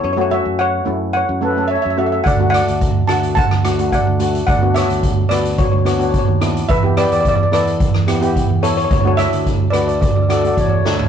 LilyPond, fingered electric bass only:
\new Staff \with { instrumentName = "Fingered electric bass" } { \clef bass \time 4/4 \key d \major \tempo 4 = 108 fis,8. fis,8. fis,8. fis,4 fis,8. | d,8. d,8. d,8. d,4 d,8. | d,8. d,8. d,8. d,4 ees,8. | e,8. e,8. e,8. e,4 e,8. |
d,8. d,8. d,8. d,8. e,8 d,8 | }